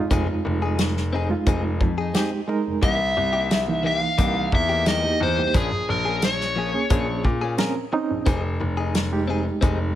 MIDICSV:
0, 0, Header, 1, 7, 480
1, 0, Start_track
1, 0, Key_signature, -4, "minor"
1, 0, Tempo, 680272
1, 75, Time_signature, 4, 2, 24, 8
1, 7021, End_track
2, 0, Start_track
2, 0, Title_t, "Electric slide guitar"
2, 0, Program_c, 0, 29
2, 2005, Note_on_c, 0, 76, 95
2, 2725, Note_off_c, 0, 76, 0
2, 2728, Note_on_c, 0, 76, 87
2, 2806, Note_off_c, 0, 76, 0
2, 2806, Note_on_c, 0, 77, 87
2, 3208, Note_off_c, 0, 77, 0
2, 3211, Note_on_c, 0, 76, 96
2, 3442, Note_off_c, 0, 76, 0
2, 3445, Note_on_c, 0, 75, 93
2, 3663, Note_off_c, 0, 75, 0
2, 3688, Note_on_c, 0, 72, 82
2, 3905, Note_off_c, 0, 72, 0
2, 3927, Note_on_c, 0, 68, 82
2, 4163, Note_on_c, 0, 70, 84
2, 4168, Note_off_c, 0, 68, 0
2, 4382, Note_off_c, 0, 70, 0
2, 4407, Note_on_c, 0, 73, 75
2, 5092, Note_off_c, 0, 73, 0
2, 7021, End_track
3, 0, Start_track
3, 0, Title_t, "Clean electric guitar"
3, 0, Program_c, 1, 27
3, 75, Note_on_c, 1, 60, 75
3, 84, Note_on_c, 1, 63, 89
3, 90, Note_on_c, 1, 68, 99
3, 192, Note_off_c, 1, 68, 0
3, 199, Note_off_c, 1, 60, 0
3, 203, Note_off_c, 1, 63, 0
3, 439, Note_on_c, 1, 68, 58
3, 461, Note_on_c, 1, 63, 48
3, 555, Note_off_c, 1, 68, 0
3, 558, Note_off_c, 1, 63, 0
3, 795, Note_on_c, 1, 60, 68
3, 807, Note_on_c, 1, 63, 73
3, 815, Note_on_c, 1, 68, 77
3, 912, Note_off_c, 1, 68, 0
3, 919, Note_off_c, 1, 60, 0
3, 923, Note_off_c, 1, 63, 0
3, 1035, Note_on_c, 1, 60, 74
3, 1043, Note_on_c, 1, 63, 86
3, 1049, Note_on_c, 1, 68, 84
3, 1149, Note_off_c, 1, 68, 0
3, 1159, Note_off_c, 1, 60, 0
3, 1160, Note_off_c, 1, 63, 0
3, 1396, Note_on_c, 1, 68, 57
3, 1415, Note_on_c, 1, 63, 47
3, 1510, Note_on_c, 1, 60, 58
3, 1513, Note_off_c, 1, 63, 0
3, 1514, Note_off_c, 1, 68, 0
3, 1522, Note_on_c, 1, 63, 58
3, 1532, Note_on_c, 1, 68, 63
3, 1627, Note_off_c, 1, 68, 0
3, 1636, Note_off_c, 1, 60, 0
3, 1636, Note_off_c, 1, 63, 0
3, 1988, Note_on_c, 1, 52, 67
3, 1994, Note_on_c, 1, 58, 72
3, 1998, Note_on_c, 1, 63, 74
3, 2003, Note_on_c, 1, 67, 73
3, 2105, Note_off_c, 1, 67, 0
3, 2111, Note_off_c, 1, 63, 0
3, 2115, Note_off_c, 1, 52, 0
3, 2116, Note_off_c, 1, 58, 0
3, 2348, Note_on_c, 1, 67, 55
3, 2358, Note_on_c, 1, 63, 47
3, 2367, Note_on_c, 1, 58, 39
3, 2462, Note_off_c, 1, 58, 0
3, 2465, Note_off_c, 1, 63, 0
3, 2470, Note_off_c, 1, 67, 0
3, 2704, Note_on_c, 1, 52, 59
3, 2713, Note_on_c, 1, 58, 59
3, 2719, Note_on_c, 1, 63, 58
3, 2725, Note_on_c, 1, 67, 61
3, 2826, Note_off_c, 1, 67, 0
3, 2832, Note_off_c, 1, 63, 0
3, 2833, Note_off_c, 1, 52, 0
3, 2838, Note_off_c, 1, 58, 0
3, 2948, Note_on_c, 1, 52, 86
3, 2953, Note_on_c, 1, 58, 80
3, 2959, Note_on_c, 1, 63, 79
3, 2964, Note_on_c, 1, 67, 86
3, 3066, Note_off_c, 1, 67, 0
3, 3071, Note_off_c, 1, 63, 0
3, 3075, Note_off_c, 1, 52, 0
3, 3075, Note_off_c, 1, 58, 0
3, 3310, Note_on_c, 1, 67, 57
3, 3322, Note_on_c, 1, 63, 50
3, 3331, Note_on_c, 1, 58, 47
3, 3427, Note_off_c, 1, 58, 0
3, 3428, Note_on_c, 1, 52, 53
3, 3431, Note_off_c, 1, 67, 0
3, 3434, Note_off_c, 1, 63, 0
3, 3436, Note_on_c, 1, 58, 58
3, 3442, Note_on_c, 1, 63, 60
3, 3447, Note_on_c, 1, 67, 69
3, 3547, Note_off_c, 1, 67, 0
3, 3553, Note_off_c, 1, 63, 0
3, 3555, Note_off_c, 1, 52, 0
3, 3557, Note_off_c, 1, 58, 0
3, 3908, Note_on_c, 1, 53, 67
3, 3913, Note_on_c, 1, 58, 72
3, 3917, Note_on_c, 1, 61, 91
3, 3922, Note_on_c, 1, 68, 74
3, 4024, Note_off_c, 1, 68, 0
3, 4031, Note_off_c, 1, 61, 0
3, 4035, Note_off_c, 1, 53, 0
3, 4035, Note_off_c, 1, 58, 0
3, 4270, Note_on_c, 1, 68, 50
3, 4283, Note_on_c, 1, 61, 46
3, 4292, Note_on_c, 1, 58, 43
3, 4385, Note_off_c, 1, 58, 0
3, 4387, Note_off_c, 1, 61, 0
3, 4390, Note_off_c, 1, 68, 0
3, 4626, Note_on_c, 1, 53, 58
3, 4634, Note_on_c, 1, 58, 57
3, 4641, Note_on_c, 1, 61, 66
3, 4647, Note_on_c, 1, 68, 64
3, 4748, Note_off_c, 1, 68, 0
3, 4753, Note_off_c, 1, 61, 0
3, 4754, Note_off_c, 1, 53, 0
3, 4758, Note_off_c, 1, 58, 0
3, 4869, Note_on_c, 1, 53, 75
3, 4874, Note_on_c, 1, 58, 84
3, 4878, Note_on_c, 1, 61, 84
3, 4883, Note_on_c, 1, 68, 87
3, 4987, Note_off_c, 1, 68, 0
3, 4992, Note_off_c, 1, 61, 0
3, 4995, Note_off_c, 1, 53, 0
3, 4997, Note_off_c, 1, 58, 0
3, 5232, Note_on_c, 1, 68, 65
3, 5243, Note_on_c, 1, 61, 55
3, 5253, Note_on_c, 1, 58, 55
3, 5345, Note_off_c, 1, 58, 0
3, 5346, Note_on_c, 1, 53, 55
3, 5351, Note_off_c, 1, 68, 0
3, 5352, Note_off_c, 1, 61, 0
3, 5353, Note_on_c, 1, 58, 58
3, 5361, Note_on_c, 1, 61, 66
3, 5366, Note_on_c, 1, 68, 75
3, 5462, Note_off_c, 1, 68, 0
3, 5468, Note_off_c, 1, 61, 0
3, 5473, Note_off_c, 1, 58, 0
3, 5474, Note_off_c, 1, 53, 0
3, 5827, Note_on_c, 1, 60, 91
3, 5836, Note_on_c, 1, 63, 81
3, 5842, Note_on_c, 1, 68, 99
3, 5943, Note_off_c, 1, 68, 0
3, 5954, Note_off_c, 1, 60, 0
3, 5954, Note_off_c, 1, 63, 0
3, 6190, Note_on_c, 1, 68, 58
3, 6210, Note_on_c, 1, 63, 56
3, 6306, Note_off_c, 1, 63, 0
3, 6310, Note_off_c, 1, 68, 0
3, 6545, Note_on_c, 1, 60, 60
3, 6556, Note_on_c, 1, 63, 65
3, 6564, Note_on_c, 1, 68, 73
3, 6661, Note_off_c, 1, 68, 0
3, 6672, Note_off_c, 1, 60, 0
3, 6672, Note_off_c, 1, 63, 0
3, 6782, Note_on_c, 1, 60, 96
3, 6790, Note_on_c, 1, 63, 96
3, 6797, Note_on_c, 1, 68, 86
3, 6901, Note_off_c, 1, 68, 0
3, 6911, Note_off_c, 1, 60, 0
3, 6913, Note_off_c, 1, 63, 0
3, 7021, End_track
4, 0, Start_track
4, 0, Title_t, "Reed electric piano"
4, 0, Program_c, 2, 4
4, 0, Note_on_c, 2, 56, 81
4, 0, Note_on_c, 2, 63, 84
4, 0, Note_on_c, 2, 65, 93
4, 654, Note_off_c, 2, 56, 0
4, 656, Note_off_c, 2, 63, 0
4, 658, Note_off_c, 2, 65, 0
4, 913, Note_on_c, 2, 56, 76
4, 918, Note_on_c, 2, 63, 68
4, 924, Note_on_c, 2, 65, 80
4, 1352, Note_off_c, 2, 56, 0
4, 1354, Note_off_c, 2, 63, 0
4, 1357, Note_off_c, 2, 65, 0
4, 1510, Note_on_c, 2, 56, 80
4, 1514, Note_on_c, 2, 63, 68
4, 1518, Note_on_c, 2, 67, 92
4, 1689, Note_off_c, 2, 56, 0
4, 1691, Note_off_c, 2, 63, 0
4, 1693, Note_off_c, 2, 67, 0
4, 1748, Note_on_c, 2, 56, 92
4, 1753, Note_on_c, 2, 63, 82
4, 1755, Note_on_c, 2, 70, 91
4, 1991, Note_off_c, 2, 56, 0
4, 1994, Note_off_c, 2, 63, 0
4, 1995, Note_off_c, 2, 70, 0
4, 2593, Note_on_c, 2, 58, 60
4, 2598, Note_on_c, 2, 63, 60
4, 2600, Note_on_c, 2, 52, 75
4, 3294, Note_off_c, 2, 58, 0
4, 3296, Note_off_c, 2, 63, 0
4, 3297, Note_off_c, 2, 52, 0
4, 3551, Note_on_c, 2, 58, 73
4, 3557, Note_on_c, 2, 63, 71
4, 3561, Note_on_c, 2, 67, 80
4, 3727, Note_off_c, 2, 58, 0
4, 3730, Note_off_c, 2, 63, 0
4, 3732, Note_off_c, 2, 67, 0
4, 3794, Note_on_c, 2, 58, 70
4, 3800, Note_on_c, 2, 63, 62
4, 3802, Note_on_c, 2, 67, 80
4, 3912, Note_off_c, 2, 58, 0
4, 3915, Note_off_c, 2, 63, 0
4, 3916, Note_off_c, 2, 67, 0
4, 4755, Note_on_c, 2, 58, 71
4, 4758, Note_on_c, 2, 61, 64
4, 4762, Note_on_c, 2, 68, 79
4, 5192, Note_off_c, 2, 58, 0
4, 5193, Note_off_c, 2, 61, 0
4, 5195, Note_off_c, 2, 68, 0
4, 5348, Note_on_c, 2, 60, 85
4, 5351, Note_on_c, 2, 61, 72
4, 5354, Note_on_c, 2, 70, 94
4, 5527, Note_off_c, 2, 60, 0
4, 5529, Note_off_c, 2, 61, 0
4, 5530, Note_off_c, 2, 70, 0
4, 5593, Note_on_c, 2, 60, 88
4, 5596, Note_on_c, 2, 61, 80
4, 5598, Note_on_c, 2, 63, 108
4, 5833, Note_off_c, 2, 60, 0
4, 5835, Note_off_c, 2, 61, 0
4, 5836, Note_off_c, 2, 63, 0
4, 6434, Note_on_c, 2, 56, 80
4, 6437, Note_on_c, 2, 63, 66
4, 6441, Note_on_c, 2, 67, 84
4, 7021, Note_off_c, 2, 56, 0
4, 7021, Note_off_c, 2, 63, 0
4, 7021, Note_off_c, 2, 67, 0
4, 7021, End_track
5, 0, Start_track
5, 0, Title_t, "Grand piano"
5, 0, Program_c, 3, 0
5, 76, Note_on_c, 3, 29, 91
5, 179, Note_off_c, 3, 29, 0
5, 198, Note_on_c, 3, 29, 23
5, 256, Note_off_c, 3, 29, 0
5, 316, Note_on_c, 3, 29, 88
5, 913, Note_off_c, 3, 29, 0
5, 1035, Note_on_c, 3, 29, 82
5, 1275, Note_off_c, 3, 29, 0
5, 1276, Note_on_c, 3, 41, 77
5, 1474, Note_off_c, 3, 41, 0
5, 1880, Note_on_c, 3, 29, 18
5, 1938, Note_off_c, 3, 29, 0
5, 1994, Note_on_c, 3, 36, 85
5, 2193, Note_off_c, 3, 36, 0
5, 2236, Note_on_c, 3, 36, 80
5, 2833, Note_off_c, 3, 36, 0
5, 2952, Note_on_c, 3, 36, 85
5, 3152, Note_off_c, 3, 36, 0
5, 3191, Note_on_c, 3, 40, 77
5, 3591, Note_off_c, 3, 40, 0
5, 3671, Note_on_c, 3, 40, 78
5, 3775, Note_off_c, 3, 40, 0
5, 3796, Note_on_c, 3, 36, 20
5, 3854, Note_off_c, 3, 36, 0
5, 3912, Note_on_c, 3, 34, 83
5, 4016, Note_off_c, 3, 34, 0
5, 4037, Note_on_c, 3, 34, 22
5, 4095, Note_off_c, 3, 34, 0
5, 4155, Note_on_c, 3, 34, 78
5, 4752, Note_off_c, 3, 34, 0
5, 4872, Note_on_c, 3, 34, 89
5, 5112, Note_on_c, 3, 46, 89
5, 5113, Note_off_c, 3, 34, 0
5, 5311, Note_off_c, 3, 46, 0
5, 5716, Note_on_c, 3, 34, 21
5, 5775, Note_off_c, 3, 34, 0
5, 5832, Note_on_c, 3, 29, 92
5, 6031, Note_off_c, 3, 29, 0
5, 6071, Note_on_c, 3, 29, 83
5, 6668, Note_off_c, 3, 29, 0
5, 6792, Note_on_c, 3, 29, 93
5, 6991, Note_off_c, 3, 29, 0
5, 7021, End_track
6, 0, Start_track
6, 0, Title_t, "Muted clean electric guitar strokes"
6, 321, Note_on_c, 9, 29, 43
6, 391, Note_off_c, 9, 29, 0
6, 560, Note_on_c, 9, 29, 43
6, 631, Note_off_c, 9, 29, 0
6, 920, Note_on_c, 9, 29, 43
6, 991, Note_off_c, 9, 29, 0
6, 1158, Note_on_c, 9, 29, 39
6, 1229, Note_off_c, 9, 29, 0
6, 1276, Note_on_c, 9, 29, 40
6, 1346, Note_off_c, 9, 29, 0
6, 1635, Note_on_c, 9, 29, 46
6, 1706, Note_off_c, 9, 29, 0
6, 1749, Note_on_c, 9, 29, 40
6, 1820, Note_off_c, 9, 29, 0
6, 2113, Note_on_c, 9, 29, 41
6, 2184, Note_off_c, 9, 29, 0
6, 2229, Note_on_c, 9, 29, 39
6, 2300, Note_off_c, 9, 29, 0
6, 2467, Note_on_c, 9, 29, 35
6, 2537, Note_off_c, 9, 29, 0
6, 2834, Note_on_c, 9, 29, 38
6, 2905, Note_off_c, 9, 29, 0
6, 3074, Note_on_c, 9, 29, 40
6, 3145, Note_off_c, 9, 29, 0
6, 3191, Note_on_c, 9, 29, 38
6, 3261, Note_off_c, 9, 29, 0
6, 3556, Note_on_c, 9, 29, 39
6, 3626, Note_off_c, 9, 29, 0
6, 3671, Note_on_c, 9, 29, 32
6, 3742, Note_off_c, 9, 29, 0
6, 4033, Note_on_c, 9, 29, 44
6, 4103, Note_off_c, 9, 29, 0
6, 4148, Note_on_c, 9, 29, 38
6, 4219, Note_off_c, 9, 29, 0
6, 4389, Note_on_c, 9, 29, 35
6, 4459, Note_off_c, 9, 29, 0
6, 4756, Note_on_c, 9, 29, 36
6, 4827, Note_off_c, 9, 29, 0
6, 4995, Note_on_c, 9, 29, 47
6, 5066, Note_off_c, 9, 29, 0
6, 5108, Note_on_c, 9, 29, 45
6, 5178, Note_off_c, 9, 29, 0
6, 5470, Note_on_c, 9, 29, 51
6, 5541, Note_off_c, 9, 29, 0
6, 5589, Note_on_c, 9, 29, 45
6, 5659, Note_off_c, 9, 29, 0
6, 5952, Note_on_c, 9, 29, 50
6, 6022, Note_off_c, 9, 29, 0
6, 6067, Note_on_c, 9, 29, 46
6, 6138, Note_off_c, 9, 29, 0
6, 6308, Note_on_c, 9, 29, 39
6, 6378, Note_off_c, 9, 29, 0
6, 6669, Note_on_c, 9, 29, 49
6, 6740, Note_off_c, 9, 29, 0
6, 6909, Note_on_c, 9, 29, 41
6, 6980, Note_off_c, 9, 29, 0
6, 7021, End_track
7, 0, Start_track
7, 0, Title_t, "Drums"
7, 76, Note_on_c, 9, 36, 91
7, 76, Note_on_c, 9, 42, 59
7, 146, Note_off_c, 9, 36, 0
7, 147, Note_off_c, 9, 42, 0
7, 555, Note_on_c, 9, 42, 60
7, 558, Note_on_c, 9, 38, 107
7, 625, Note_off_c, 9, 42, 0
7, 629, Note_off_c, 9, 38, 0
7, 683, Note_on_c, 9, 38, 27
7, 753, Note_off_c, 9, 38, 0
7, 1034, Note_on_c, 9, 42, 59
7, 1035, Note_on_c, 9, 36, 102
7, 1104, Note_off_c, 9, 42, 0
7, 1106, Note_off_c, 9, 36, 0
7, 1275, Note_on_c, 9, 36, 76
7, 1345, Note_off_c, 9, 36, 0
7, 1513, Note_on_c, 9, 42, 52
7, 1516, Note_on_c, 9, 38, 103
7, 1584, Note_off_c, 9, 42, 0
7, 1587, Note_off_c, 9, 38, 0
7, 1994, Note_on_c, 9, 36, 101
7, 1994, Note_on_c, 9, 42, 52
7, 2065, Note_off_c, 9, 36, 0
7, 2065, Note_off_c, 9, 42, 0
7, 2475, Note_on_c, 9, 42, 52
7, 2479, Note_on_c, 9, 38, 114
7, 2546, Note_off_c, 9, 42, 0
7, 2549, Note_off_c, 9, 38, 0
7, 2953, Note_on_c, 9, 36, 107
7, 2953, Note_on_c, 9, 42, 64
7, 3023, Note_off_c, 9, 36, 0
7, 3023, Note_off_c, 9, 42, 0
7, 3192, Note_on_c, 9, 36, 72
7, 3262, Note_off_c, 9, 36, 0
7, 3430, Note_on_c, 9, 42, 63
7, 3433, Note_on_c, 9, 38, 104
7, 3500, Note_off_c, 9, 42, 0
7, 3504, Note_off_c, 9, 38, 0
7, 3912, Note_on_c, 9, 36, 100
7, 3912, Note_on_c, 9, 42, 61
7, 3982, Note_off_c, 9, 42, 0
7, 3983, Note_off_c, 9, 36, 0
7, 4390, Note_on_c, 9, 42, 65
7, 4394, Note_on_c, 9, 38, 106
7, 4461, Note_off_c, 9, 42, 0
7, 4464, Note_off_c, 9, 38, 0
7, 4520, Note_on_c, 9, 38, 30
7, 4591, Note_off_c, 9, 38, 0
7, 4870, Note_on_c, 9, 42, 69
7, 4872, Note_on_c, 9, 36, 104
7, 4941, Note_off_c, 9, 42, 0
7, 4942, Note_off_c, 9, 36, 0
7, 5112, Note_on_c, 9, 36, 71
7, 5183, Note_off_c, 9, 36, 0
7, 5350, Note_on_c, 9, 42, 55
7, 5354, Note_on_c, 9, 38, 111
7, 5421, Note_off_c, 9, 42, 0
7, 5424, Note_off_c, 9, 38, 0
7, 5831, Note_on_c, 9, 42, 57
7, 5832, Note_on_c, 9, 36, 106
7, 5901, Note_off_c, 9, 42, 0
7, 5902, Note_off_c, 9, 36, 0
7, 6313, Note_on_c, 9, 42, 58
7, 6316, Note_on_c, 9, 38, 99
7, 6383, Note_off_c, 9, 42, 0
7, 6387, Note_off_c, 9, 38, 0
7, 6791, Note_on_c, 9, 36, 112
7, 6791, Note_on_c, 9, 42, 56
7, 6861, Note_off_c, 9, 42, 0
7, 6862, Note_off_c, 9, 36, 0
7, 7021, End_track
0, 0, End_of_file